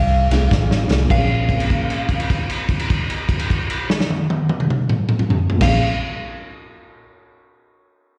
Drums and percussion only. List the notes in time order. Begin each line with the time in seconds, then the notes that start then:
0.31 snare, ride
0.51 kick, snare
0.71 snare
0.91 snare
1.10 kick, crash
1.49 kick, crash
1.60 crash
1.70 kick, crash
1.90 crash
2.09 kick, crash
2.20 crash
2.30 kick, crash
2.50 crash
2.69 kick, crash
2.79 crash
2.90 kick, crash
3.10 crash
3.29 kick, crash
3.39 crash
3.50 kick, crash
3.70 crash
3.90 snare
4.00 snare
4.10 high tom
4.30 high tom
4.49 high tom
4.60 mid tom
4.70 mid tom
4.89 mid tom
5.09 mid tom
5.19 mid tom
5.30 floor tom
5.50 floor tom
5.61 kick, snare, crash